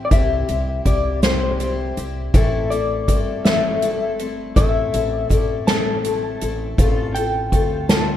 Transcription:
Already playing: C4 E4 G4 G5
0.05 D5
0.11 C2 C3 G3 C4 E4 G4 E5, kick, closed hi-hat
0.48 C2 C4 E4 G4, closed hi-hat
0.85 C2 G3 C4 E4 G4 D5, kick, closed hi-hat
1.22 C3 G3 C4 E4 G4 C5, snare, closed hi-hat
1.60 G3 C4 E4 G4, closed hi-hat
1.97 C2 C4 E4 G4, closed hi-hat
2.34 A1 A2 E3 A3 C4 E4 A4, kick, closed hi-hat
2.70 A3 C4 E4 A4 D5, closed hi-hat
3.08 G1 A3 C4 E4 A4, kick, closed hi-hat
3.45 A2 E3 A3 C4 E4 A4 E5, snare, closed hi-hat
3.82 A3 C4 E4 A4, closed hi-hat
4.19 A3 C4 E4 A4, closed hi-hat
4.56 A1 A2 E3 A3 C4 E4 A4 E5, kick, closed hi-hat
4.93 A1 A3 C4 E4 A4, closed hi-hat
5.30 A1 A3 C4 E4 A4, kick, closed hi-hat
5.36 D5
5.67 A2 E3 A3 C4 E4 A4 A5, snare, closed hi-hat
6.04 A3 C4 E4 A4, closed hi-hat
6.41 A1 A3 C4 E4 A4, closed hi-hat
6.78 A1 A3 C4 F4 A4, kick, closed hi-hat
7.15 C4 F4 A4 G5, closed hi-hat
7.52 D2 A3 C4 F4 A4, kick, closed hi-hat
7.89 A3 C4 F4 A4 A5, snare, closed hi-hat

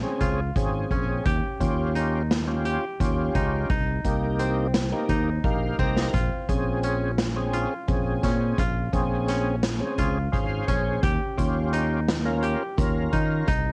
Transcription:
Already playing: C#4 F4
0.03 C4 C#4 G#4
0.21 C#2 F4, kick, closed hi-hat
0.56 G#1 C4 C#4 G#4, kick, closed hi-hat
0.91 A#1 C#4, kick, closed hi-hat
1.26 D#2 G4, kick, closed hi-hat
1.60 D#2 C#4 F4 G4, kick, closed hi-hat
1.95 D#4, closed hi-hat
2.31 snare, closed hi-hat
2.47 C#4 F4 G4
2.65 G4, closed hi-hat
3.00 D#2 C#4 F4 G4, kick, closed hi-hat
3.35 C#2 D#4, kick, closed hi-hat
3.70 C2 D#4, kick, closed hi-hat
4.05 C2 A#3 D#4 G4, kick, closed hi-hat
4.39 C4, closed hi-hat
4.74 snare, closed hi-hat
4.92 A#3 D#4 G4
5.09 D#2 D#4, kick, closed hi-hat
5.44 A#1 A#3 D#4 G4 F5, kick
5.79 C2 C4 A#5, kick
5.97 snare
6.14 A#1 F4, kick, closed hi-hat
6.49 A#1 C4 C#4 G#4, kick, closed hi-hat
6.83 C#4, closed hi-hat
7.18 snare, closed hi-hat
7.36 C4 C#4 G#4
7.53 F4, closed hi-hat
7.88 A#1 C4 C#4 G#4, kick, closed hi-hat
8.23 A#2 C#4, kick, snare, closed hi-hat
8.58 A#1 F4, kick, closed hi-hat
8.93 A#1 C4 C#4 G#4, kick, closed hi-hat
9.28 C#4, snare, closed hi-hat
9.63 snare, closed hi-hat
9.80 C4 C#4 G#4
9.98 C#2 F4, kick, closed hi-hat
10.32 G#1 C#4 G#4 C5 F5, kick, closed hi-hat
10.67 A#1 C#4 C#5, kick, closed hi-hat
11.03 D#2 G4, kick, closed hi-hat
11.37 D#2 C#4 F4 G4, kick, closed hi-hat
11.73 D#4, closed hi-hat
12.08 snare, closed hi-hat
12.25 C#4 F4 A#4
12.43 G4, closed hi-hat
12.77 D#2 C#4 F4 A#4, kick, closed hi-hat
13.13 D#3 D#4, kick, closed hi-hat
13.48 C2 D#4, kick, closed hi-hat

